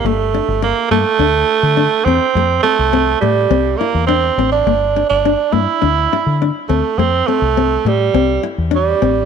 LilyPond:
<<
  \new Staff \with { instrumentName = "Nylon-string guitar" } { \time 4/4 \key f \major \tempo 4 = 104 bes8 d'8 r8 bes8 d'8 r8 d'8 c'8 | a8 c'8 c'8 a8 c'8 e'8 d'8 c'8 | bes8 d'8 d'8 bes8 d'8 e'8 d'8 c'8 | a8 c'8 c'8 a8 c'8 e'8 d'8 c'8 | }
  \new Staff \with { instrumentName = "Tenor saxophone" } { \time 4/4 \key f \major a4 bes8 a2 c'8~ | c'8 a4 g4 bes8 c'8. d'16~ | d'8. d'8. e'4. r8 a8 | c'8 a4 g4 r8 g4 | }
  \new Staff \with { instrumentName = "Fingered electric bass" } { \clef bass \time 4/4 \key f \major g,,8. g,,8 r16 g,16 r16 d,8 r16 d8 r16 e,16 r16 | f,8 r16 c,8. a,8 c,8 r16 e,8. a,,8 | g,,8. g,,8 r16 g,16 r16 d,8 r16 d8 r16 d,16 r16 | f,8 r16 c,8. a,8 c,8 r16 e,8. a,,8 | }
>>